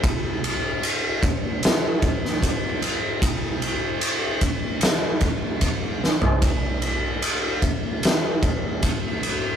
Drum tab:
RD |x-x-x-x-x-x-x-x-|x-x-x-x-x-x-x---|x-x-x-x-x-x-x-x-|
SD |--------o--o----|--------o-----o-|--------o-------|
FT |----------------|---------------o|----------------|
BD |o-----o---o-o---|o-----o---o-o---|o-----o---o-o---|